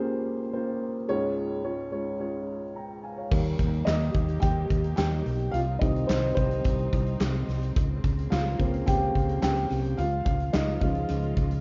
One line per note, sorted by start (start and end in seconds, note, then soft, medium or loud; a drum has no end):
0.00 1.05 C#2 medium
0.00 1.05 C#3 medium
0.00 0.53 A#3 medium
0.00 0.53 C#4 medium
0.00 0.53 F4 medium
0.00 1.11 G4 medium
0.00 1.11 G#4 medium
0.00 0.53 C5 loud
0.53 0.95 A#3 medium
0.53 0.95 C#4 medium
0.53 0.95 F4 medium
0.53 0.95 C5 medium
1.08 3.27 C#2 medium
1.08 3.27 G#2 medium
1.08 1.51 G#3 medium
1.08 1.51 C#4 medium
1.08 1.51 F4 medium
1.08 1.51 C#5 loud
1.64 1.85 G#3 medium
1.64 1.85 C#4 medium
1.64 1.85 F4 medium
1.64 1.86 C#5 medium
1.92 2.13 G#3 medium
1.92 2.13 C#4 medium
1.92 2.13 F4 medium
1.92 2.13 C#5 medium
2.20 2.62 G#3 medium
2.20 2.62 C#4 medium
2.20 2.62 F4 medium
2.20 2.62 C#5 medium
2.76 3.03 G5 soft
2.76 3.02 A#5 soft
3.03 3.16 F5 soft
3.03 3.17 G#5 medium
3.17 3.44 C#5 soft
3.17 3.44 F5 soft
3.30 3.54 D#2 loud
3.30 4.10 D#3 medium
3.30 5.52 D#3 medium
3.30 4.11 G3 soft
3.30 4.11 A#3 medium
3.30 5.52 A#3 medium
3.30 5.52 G4 medium
3.30 kick loud
3.30 crash medium
3.46 closed hi-hat soft
3.59 3.82 D#2 loud
3.59 kick medium
3.59 closed hi-hat medium
3.73 closed hi-hat soft
3.85 4.09 D#2 medium
3.85 4.39 D#4 medium
3.85 4.43 D#5 medium
3.85 snare loud
3.85 clap loud
4.14 4.38 D#2 loud
4.14 kick medium
4.14 closed hi-hat medium
4.29 closed hi-hat soft
4.40 4.65 D#2 loud
4.40 4.94 G4 medium
4.40 4.95 G5 loud
4.40 kick loud
4.40 closed hi-hat medium
4.70 4.93 D#2 medium
4.70 kick medium
4.70 closed hi-hat medium
4.84 closed hi-hat medium
4.96 5.21 D#2 medium
4.96 5.50 G4 medium
4.96 5.49 G5 loud
4.96 snare loud
4.96 clap medium
5.26 5.49 B1 medium
5.26 open hi-hat medium
5.40 closed hi-hat soft
5.52 5.76 C2 loud
5.52 7.74 G3 medium
5.52 9.94 C4 medium
5.52 7.74 D#4 medium
5.52 5.61 F4 medium
5.52 5.58 F5 loud
5.52 closed hi-hat medium
5.79 6.04 C2 medium
5.79 7.71 D#3 medium
5.79 7.72 G3 soft
5.79 6.08 C4 medium
5.79 6.08 D#4 medium
5.79 6.06 D#5 medium
5.79 kick loud
5.79 closed hi-hat medium
5.96 closed hi-hat soft
6.07 6.32 C2 medium
6.07 6.35 C4 medium
6.07 6.33 C5 medium
6.07 snare loud
6.07 clap loud
6.35 6.60 C2 loud
6.35 7.44 C4 medium
6.35 7.43 C5 medium
6.35 kick medium
6.35 closed hi-hat medium
6.51 closed hi-hat soft
6.64 6.88 C2 loud
6.64 kick medium
6.64 closed hi-hat medium
6.79 closed hi-hat soft
6.93 7.15 C2 loud
6.93 kick medium
6.93 closed hi-hat medium
7.06 closed hi-hat medium
7.20 7.43 C2 loud
7.20 snare loud
7.20 clap medium
7.48 7.71 C2 medium
7.48 snare soft
7.48 open hi-hat medium
7.63 closed hi-hat soft
7.76 7.99 C#2 loud
7.76 9.97 C#3 medium
7.76 9.97 A#3 medium
7.76 kick loud
7.76 closed hi-hat medium
8.04 8.27 C#2 medium
8.04 kick medium
8.04 closed hi-hat medium
8.18 closed hi-hat medium
8.30 8.54 C#2 medium
8.30 8.83 F4 medium
8.30 8.88 F5 medium
8.30 snare loud
8.30 clap loud
8.59 8.82 C#2 loud
8.59 9.38 C#3 medium
8.59 9.39 A#3 soft
8.59 9.39 C4 medium
8.59 kick medium
8.59 closed hi-hat medium
8.73 closed hi-hat soft
8.86 9.10 C#2 medium
8.86 9.39 G4 medium
8.86 9.40 G5 medium
8.86 kick loud
8.86 closed hi-hat loud
9.15 9.38 C#2 medium
9.15 kick medium
9.15 closed hi-hat medium
9.29 closed hi-hat soft
9.42 9.65 C#2 loud
9.42 9.95 G4 medium
9.42 9.99 G5 loud
9.42 snare loud
9.42 clap loud
9.56 closed hi-hat soft
9.70 9.93 C2 medium
9.70 snare soft
9.70 open hi-hat medium
9.84 closed hi-hat soft
9.97 10.21 C#2 loud
9.97 11.61 C#3 medium
9.97 11.61 G#3 medium
9.97 11.61 F4 medium
9.97 10.24 F4 medium
9.97 10.24 F5 loud
9.97 closed hi-hat medium
10.25 10.49 C#2 medium
10.25 10.52 F4 medium
10.25 10.54 F5 medium
10.25 kick medium
10.25 closed hi-hat medium
10.40 closed hi-hat soft
10.53 10.76 C#2 medium
10.53 10.80 D#4 medium
10.53 10.82 D#5 medium
10.53 snare loud
10.53 clap medium
10.81 11.04 C#2 loud
10.81 11.18 F3 medium
10.81 11.18 G#3 soft
10.81 11.19 C#4 medium
10.81 11.61 F4 medium
10.81 11.61 F5 medium
10.81 kick medium
10.81 closed hi-hat medium
10.95 closed hi-hat soft
11.08 11.32 C#2 loud
11.08 closed hi-hat loud
11.23 closed hi-hat soft
11.37 11.60 C#2 medium
11.37 kick medium
11.37 closed hi-hat medium
11.51 closed hi-hat medium